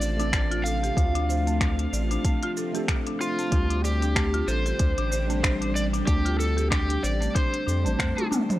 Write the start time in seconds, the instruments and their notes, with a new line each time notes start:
Already playing: analog synth bass A1, synth drone C3 F3 A3 D4 F4, tine electric piano A3 C4 D4 F4, electric slide guitar D5
0.01 marimba D5, shaker
0.17 tine electric piano A3 C4 D4 A4, marimba D4, closed hi-hat, shaker
0.33 marimba A3, finger snap, kick, closed hi-hat, shaker
0.51 marimba F4, closed hi-hat
0.64 marimba A4, electric slide guitar F5, shaker
0.83 marimba G4, closed hi-hat, shaker
0.95 analog synth bass D2, tine electric piano A3 C4 D4, synth drone C4, marimba D4, kick, closed hi-hat, shaker
0.99 tine electric piano F4
1.15 marimba D4, closed hi-hat
1.29 marimba C5, shaker
1.47 marimba A3, closed hi-hat, shaker
1.61 marimba D4, finger snap, kick, closed hi-hat, shaker
1.79 marimba D4, closed hi-hat
1.93 analog synth bass A1, marimba D5, shaker
2.11 marimba D4, closed hi-hat, shaker
2.25 marimba A3, kick, closed hi-hat, shaker
2.43 marimba F4, closed hi-hat
2.57 marimba A4, shaker
2.73 tine electric piano A3 C4 D4 A4, marimba G4, closed hi-hat, shaker
2.88 marimba D4, finger snap, kick, closed hi-hat, shaker
3.07 marimba D4, closed hi-hat
3.21 electric slide guitar F4, marimba C5, shaker
3.39 marimba A3, closed hi-hat, shaker
3.50 analog synth bass D2, synth drone C3 D3 G3 D4 G4, tine electric piano G3 C4 D4, marimba D4, kick, closed hi-hat, shaker
3.54 tine electric piano G4
3.70 marimba D4, closed hi-hat
3.84 electric slide guitar G4, marimba D5, shaker
4.02 marimba D4, closed hi-hat, shaker
4.16 marimba A3, finger snap, kick, closed hi-hat, shaker
4.34 marimba F4, closed hi-hat
4.48 analog synth bass A1, marimba A4, electric slide guitar C5, shaker
4.66 marimba G4, closed hi-hat, shaker
4.79 analog synth bass D2, marimba D4, kick, closed hi-hat, shaker
4.98 analog synth bass A1, marimba D4, closed hi-hat
5.12 marimba C5, shaker
5.27 tine electric piano G3 C4 D4 C5, marimba A3, closed hi-hat, shaker
5.43 marimba D4, finger snap, kick, closed hi-hat, shaker
5.62 marimba D4, closed hi-hat
5.75 marimba D5, electric slide guitar D5, shaker
5.93 marimba D4, closed hi-hat, shaker
6.06 analog synth bass D2, tine electric piano G3 C4 D4, marimba A3, electric slide guitar G4, kick, closed hi-hat, shaker
6.10 tine electric piano G4
6.25 marimba F4, closed hi-hat
6.39 marimba A4, electric slide guitar A4, shaker
6.57 marimba G4, closed hi-hat, shaker
6.71 marimba D4, electric slide guitar G4, finger snap, kick, closed hi-hat, shaker
6.89 marimba D4, closed hi-hat
7.03 analog synth bass A1, marimba C5, electric slide guitar D5, shaker
7.21 marimba A3, closed hi-hat, shaker
7.35 marimba D4, electric slide guitar C5, kick, closed hi-hat, shaker
7.53 marimba D4, closed hi-hat
7.67 analog synth bass F2, marimba D4, shaker
7.84 analog synth bass A1, tine electric piano G3 C4 D4, marimba A3, closed hi-hat, shaker
7.88 tine electric piano C5
7.99 analog synth bass F2, marimba A3, finger snap, kick, closed hi-hat, shaker
8.17 marimba A3, closed hi-hat, high tom
8.31 marimba D4, mid tom, shaker
8.49 marimba C5, closed hi-hat, mid tom, shaker